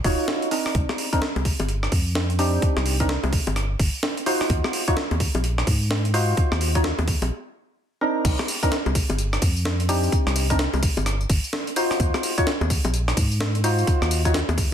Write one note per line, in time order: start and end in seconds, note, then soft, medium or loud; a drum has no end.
0.04 0.16 D#1 loud
0.04 0.49 D#4 medium
0.04 0.49 F4 medium
0.04 0.49 F#4 medium
0.04 0.49 C#5 loud
0.04 kick loud
0.04 open hi-hat medium
0.28 snare loud
0.42 closed hi-hat soft
0.51 1.09 C4 medium
0.51 1.09 D4 medium
0.51 1.09 D#4 medium
0.51 1.09 A#4 medium
0.51 open hi-hat loud
0.66 cross-stick medium
0.75 0.86 C2 medium
0.75 kick loud
0.75 closed hi-hat medium
0.89 cross-stick medium
0.89 high bongo medium
0.98 open hi-hat loud
1.13 1.27 C4 loud
1.13 1.27 D4 medium
1.13 1.27 D#4 medium
1.13 1.27 A#4 loud
1.13 kick medium
1.13 closed hi-hat medium
1.22 snare loud
1.36 1.53 C2 loud
1.36 closed hi-hat soft
1.36 high bongo medium
1.45 kick loud
1.45 open hi-hat loud
1.60 1.89 G1 loud
1.60 closed hi-hat medium
1.60 high bongo medium
1.69 closed hi-hat medium
1.83 cross-stick medium
1.92 2.59 F2 medium
1.92 kick loud
1.92 open hi-hat medium
2.15 snare loud
2.30 closed hi-hat soft
2.39 2.97 C4 medium
2.39 2.97 D4 medium
2.39 2.97 D#4 medium
2.39 2.97 G4 loud
2.39 open hi-hat medium
2.62 kick loud
2.62 closed hi-hat medium
2.77 3.18 C2 loud
2.77 cross-stick medium
2.77 high bongo medium
2.86 open hi-hat loud
3.00 3.14 C4 medium
3.00 3.14 D4 medium
3.00 3.14 D#4 medium
3.00 3.14 A#4 loud
3.00 kick medium
3.00 closed hi-hat medium
3.09 snare loud
3.24 3.40 C2 loud
3.24 closed hi-hat soft
3.24 high bongo medium
3.33 kick loud
3.33 open hi-hat loud
3.47 3.76 G1 loud
3.47 closed hi-hat medium
3.47 high bongo medium
3.56 cross-stick medium
3.56 closed hi-hat medium
3.79 3.91 G1 loud
3.79 kick loud
3.79 open hi-hat loud
4.03 snare loud
4.17 closed hi-hat medium
4.26 4.84 D#4 medium
4.26 4.84 F4 medium
4.26 4.84 F#4 medium
4.26 4.84 C5 loud
4.26 open hi-hat loud
4.41 cross-stick medium
4.50 4.61 D#2 loud
4.50 kick loud
4.50 closed hi-hat medium
4.64 cross-stick medium
4.64 high bongo medium
4.73 open hi-hat loud
4.88 5.02 D#4 loud
4.88 5.02 F4 medium
4.88 5.02 F#4 medium
4.88 5.02 C#5 loud
4.88 kick medium
4.88 closed hi-hat medium
4.97 snare loud
5.11 5.28 D#2 loud
5.11 closed hi-hat soft
5.11 high bongo medium
5.20 kick loud
5.20 open hi-hat loud
5.35 5.64 A#1 loud
5.35 closed hi-hat medium
5.35 high bongo medium
5.44 closed hi-hat medium
5.58 cross-stick medium
5.67 6.34 G#2 medium
5.67 kick medium
5.67 open hi-hat loud
5.91 snare loud
6.05 closed hi-hat medium
6.14 6.72 D#4 medium
6.14 6.72 F4 medium
6.14 6.72 F#4 medium
6.14 6.72 C5 loud
6.14 open hi-hat loud
6.37 kick loud
6.37 closed hi-hat medium
6.52 6.93 D#2 loud
6.52 cross-stick medium
6.52 high bongo medium
6.61 open hi-hat loud
6.75 6.89 D#4 loud
6.75 6.89 F4 medium
6.75 6.89 F#4 medium
6.75 6.89 C#5 loud
6.75 kick medium
6.75 closed hi-hat medium
6.84 snare loud
6.99 7.15 D#2 loud
6.99 closed hi-hat soft
6.99 high bongo medium
7.08 kick loud
7.08 open hi-hat loud
7.22 7.31 A#1 loud
7.22 closed hi-hat medium
7.22 high bongo medium
8.01 8.48 C4 medium
8.01 8.48 D4 medium
8.01 8.48 D#4 medium
8.01 8.48 A#4 medium
8.25 8.36 C2 loud
8.25 kick loud
8.25 closed hi-hat medium
8.25 crash loud
8.25 tambourine soft
8.39 cross-stick medium
8.39 tambourine soft
8.39 high bongo medium
8.48 open hi-hat loud
8.48 tambourine medium
8.63 8.77 C4 loud
8.63 8.77 D4 medium
8.63 8.77 D#4 medium
8.63 8.77 A#4 loud
8.63 kick medium
8.63 closed hi-hat medium
8.63 tambourine soft
8.72 snare loud
8.72 tambourine soft
8.86 9.03 C2 loud
8.86 tambourine soft
8.86 high bongo medium
8.95 kick loud
8.95 open hi-hat loud
8.95 tambourine medium
9.10 9.39 G1 loud
9.10 closed hi-hat medium
9.10 tambourine soft
9.10 high bongo medium
9.18 closed hi-hat medium
9.18 tambourine soft
9.33 cross-stick medium
9.33 tambourine soft
9.42 10.09 F2 medium
9.42 kick loud
9.42 open hi-hat loud
9.42 tambourine medium
9.56 tambourine soft
9.65 snare loud
9.65 tambourine soft
9.80 closed hi-hat medium
9.80 tambourine soft
9.89 10.47 C4 loud
9.89 10.47 D4 medium
9.89 10.47 D#4 medium
9.89 10.47 G4 loud
9.89 open hi-hat loud
9.89 tambourine medium
10.03 tambourine soft
10.12 kick loud
10.12 closed hi-hat medium
10.12 tambourine soft
10.27 10.68 C2 loud
10.27 cross-stick medium
10.27 tambourine soft
10.36 open hi-hat loud
10.36 tambourine medium
10.50 10.64 C4 loud
10.50 10.64 D4 medium
10.50 10.64 D#4 medium
10.50 10.64 A#4 loud
10.50 kick medium
10.50 closed hi-hat medium
10.50 tambourine soft
10.59 snare loud
10.59 tambourine soft
10.74 10.90 C2 loud
10.74 closed hi-hat soft
10.74 tambourine soft
10.74 high bongo medium
10.83 kick loud
10.83 open hi-hat loud
10.83 tambourine medium
10.97 11.26 G1 loud
10.97 closed hi-hat medium
10.97 tambourine soft
10.97 high bongo medium
11.06 cross-stick medium
11.06 closed hi-hat medium
11.06 tambourine soft
11.21 tambourine soft
11.30 11.41 G1 loud
11.30 kick loud
11.30 open hi-hat loud
11.30 tambourine medium
11.44 tambourine soft
11.53 snare loud
11.53 tambourine soft
11.67 closed hi-hat medium
11.67 tambourine soft
11.76 12.34 D#4 loud
11.76 12.34 F4 medium
11.76 12.34 F#4 medium
11.76 12.34 C5 loud
11.76 open hi-hat loud
11.76 tambourine medium
11.91 cross-stick medium
11.91 tambourine soft
12.00 12.11 D#2 loud
12.00 kick loud
12.00 closed hi-hat medium
12.00 tambourine soft
12.14 cross-stick medium
12.14 tambourine soft
12.14 high bongo medium
12.23 open hi-hat loud
12.23 tambourine medium
12.38 12.52 D#4 loud
12.38 12.52 F4 medium
12.38 12.52 F#4 medium
12.38 12.52 C#5 loud
12.38 kick medium
12.38 closed hi-hat medium
12.38 tambourine soft
12.47 snare loud
12.47 tambourine soft
12.61 12.78 D#2 loud
12.61 tambourine soft
12.61 high bongo medium
12.70 kick loud
12.70 open hi-hat loud
12.70 tambourine medium
12.85 13.14 A#1 loud
12.85 closed hi-hat medium
12.85 tambourine soft
12.85 high bongo medium
12.94 closed hi-hat medium
12.94 tambourine soft
13.08 cross-stick medium
13.08 tambourine soft
13.17 13.84 G#2 loud
13.17 kick loud
13.17 open hi-hat loud
13.17 tambourine medium
13.32 tambourine soft
13.41 snare loud
13.41 tambourine soft
13.55 closed hi-hat soft
13.55 tambourine soft
13.64 14.22 D#4 medium
13.64 14.22 F4 medium
13.64 14.22 F#4 medium
13.64 14.22 C5 loud
13.64 open hi-hat loud
13.64 tambourine medium
13.79 tambourine soft
13.87 kick loud
13.87 closed hi-hat medium
13.87 tambourine soft
14.02 14.43 D#2 loud
14.02 cross-stick medium
14.02 tambourine soft
14.11 open hi-hat loud
14.11 tambourine medium
14.25 14.39 D#4 loud
14.25 14.39 F4 medium
14.25 14.39 F#4 medium
14.25 14.39 C#5 loud
14.25 kick medium
14.25 closed hi-hat medium
14.25 tambourine soft
14.34 snare loud
14.34 tambourine soft
14.49 14.65 D#2 loud
14.49 closed hi-hat soft
14.49 tambourine soft
14.49 high bongo medium
14.58 kick loud
14.58 open hi-hat loud
14.58 tambourine medium